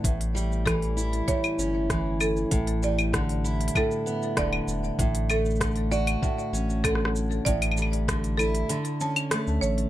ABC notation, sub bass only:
X:1
M:4/4
L:1/16
Q:1/4=97
K:Amix
V:1 name="Sub bass" clef=bass
A,,,8 z2 G,,,6 | A,,,8 z4 E,,,2 E,,,2 | A,,,8 z2 A,,,6 | A,,,8 z4 z D,, A,,,2 |]